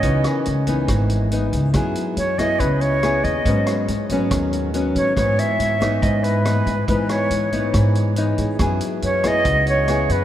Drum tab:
HH |xxxxxxxx|xxxxxxxx|xxxxxxxx|xxxxxxxx|
SD |-r--r---|r--r--r-|-r--r---|r--r--r-|
BD |o--oo--o|o--oo--o|o--oo--o|o--oo--o|

HH |xxxxxxxx|xxxxxxxx|
SD |-r--r---|r--r--r-|
BD |o--oo--o|o--oo--o|